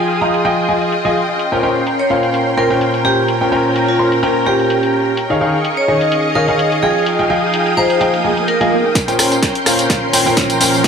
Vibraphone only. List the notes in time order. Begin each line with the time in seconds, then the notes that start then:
1.99 C#5
2.58 A#4
3.05 G4
3.88 F4
4.47 G4
5.77 C#5
6.35 A#4
6.83 G#4
7.77 C5
7.90 C5
8.48 A#4